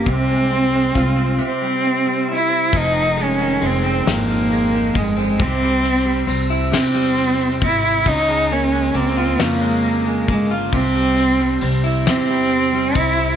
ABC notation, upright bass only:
X:1
M:6/8
L:1/8
Q:3/8=45
K:Fm
V:1 name="Upright bass" clef=bass
C,,2 C,, z3 | F,,,2 F,,, A,,,2 G,,, | C,,2 C,, =E,,2 A,,, | D,,2 D,, F,,2 G,,, |
C,,2 C,, =E,,2 C,, |]